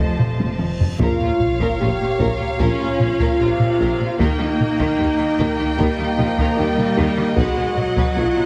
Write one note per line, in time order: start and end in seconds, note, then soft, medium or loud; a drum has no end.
0.00 0.78 F1 soft
0.00 0.57 F3 soft
0.00 0.60 A3 medium
0.00 0.76 C5 soft
0.00 0.76 D#5 medium
0.00 0.77 A5 soft
0.00 reverse cymbal medium
0.19 taiko low-mid medium
0.40 taiko high medium
0.59 taiko mid medium
0.80 taiko low medium
0.99 1.08 A#1 medium
0.99 1.09 A#1 medium
0.99 1.08 A#2 medium
0.99 1.77 F4 medium
0.99 1.20 A#4 medium
0.99 4.16 C#5 medium
0.99 4.16 F5 medium
0.99 taiko medium
0.99 sub drop medium
1.21 1.29 A#2 soft
1.21 1.31 F4 soft
1.40 taiko low-mid medium
1.60 1.68 A#2 medium
1.60 1.79 A#4 medium
1.60 taiko medium
1.80 1.88 A#1 soft
1.80 1.89 A#1 soft
1.80 1.88 A#2 soft
1.80 1.89 F4 soft
1.80 2.59 G4 medium
2.00 2.08 A#2 medium
2.00 2.08 C#4 medium
2.19 2.28 A#1 medium
2.19 2.30 A#1 medium
2.19 2.27 A#2 medium
2.19 2.38 A#4 medium
2.19 taiko medium
2.38 2.48 A#2 soft
2.38 2.46 F4 soft
2.59 2.68 A#1 medium
2.59 2.69 A#1 medium
2.59 2.67 A#2 medium
2.59 3.36 C#4 medium
2.59 4.19 F4 medium
2.59 2.78 A#4 medium
2.59 taiko medium
2.79 2.88 A#2 soft
2.79 2.87 F4 medium
2.98 3.08 A#1 soft
2.98 3.09 A#1 medium
2.98 3.08 A#2 soft
2.98 3.06 C#4 medium
2.98 taiko low-mid medium
3.19 3.27 A#2 medium
3.19 3.38 A#4 medium
3.19 taiko medium
3.39 3.48 A#1 medium
3.39 3.49 A#1 medium
3.39 3.47 A#2 soft
3.39 4.20 C3 medium
3.39 3.48 F4 medium
3.59 3.67 A#2 medium
3.59 3.69 C#4 medium
3.59 taiko low-mid soft
3.79 3.87 A#1 medium
3.79 3.88 A#1 medium
3.79 3.87 A#2 medium
3.79 3.98 A#4 medium
3.99 4.08 A#2 medium
3.99 4.07 F4 medium
4.18 4.27 D#2 medium
4.18 4.28 D#2 medium
4.18 4.27 D#3 medium
4.18 5.75 A#3 medium
4.18 5.75 D#4 loud
4.18 4.39 A#4 medium
4.18 8.46 D#5 medium
4.18 7.37 G5 medium
4.18 taiko medium
4.39 4.47 D#3 medium
4.39 4.48 G4 medium
4.60 taiko low-mid medium
4.79 4.87 D#3 medium
4.79 4.98 A#4 medium
4.79 taiko medium
4.98 5.06 D#2 medium
4.98 5.08 D#2 medium
4.98 5.07 D#3 medium
4.98 5.09 G4 medium
5.18 5.26 D#3 medium
5.18 5.28 D#4 medium
5.38 5.47 D#2 medium
5.38 5.46 D#3 medium
5.38 5.58 A#4 medium
5.38 taiko medium
5.58 5.66 D#3 medium
5.58 5.67 G4 medium
5.77 5.86 D#2 medium
5.77 5.85 D#3 medium
5.77 6.18 G3 medium
5.77 7.38 A#3 medium
5.77 5.97 A#4 medium
5.77 taiko medium
5.98 6.06 D#3 medium
5.98 6.07 G4 medium
6.17 6.25 D#2 medium
6.17 6.26 D#2 medium
6.17 6.25 D#3 medium
6.17 6.57 F3 medium
6.17 6.26 D#4 medium
6.17 taiko low-mid medium
6.37 6.45 D#3 medium
6.37 taiko medium
6.41 6.58 A#4 medium
6.56 6.65 D#2 medium
6.56 6.66 D#2 medium
6.56 6.65 D#3 medium
6.56 7.37 G3 medium
6.56 6.66 G4 medium
6.77 6.85 D#3 medium
6.77 6.87 D#4 medium
6.77 taiko low-mid soft
6.96 7.04 D#2 medium
6.96 7.06 D#2 medium
6.96 7.05 D#3 medium
6.96 7.17 A#4 medium
7.18 7.25 D#3 medium
7.18 7.26 G4 medium
7.36 7.44 B1 medium
7.36 7.46 B1 medium
7.36 7.45 B2 medium
7.36 7.76 G#3 medium
7.36 8.17 F#4 loud
7.36 7.57 B4 medium
7.36 8.46 F#5 medium
7.36 taiko medium
7.56 7.64 B2 medium
7.56 7.66 F#4 medium
7.76 8.46 F#3 medium
7.76 taiko low-mid medium
7.96 8.05 B2 medium
7.96 8.16 B4 medium
7.96 taiko medium
8.16 8.24 B1 medium
8.16 8.25 B1 medium
8.16 8.25 B2 medium
8.16 8.46 F4 medium
8.16 8.24 F#4 medium
8.37 8.45 B2 medium
8.37 8.45 D#4 soft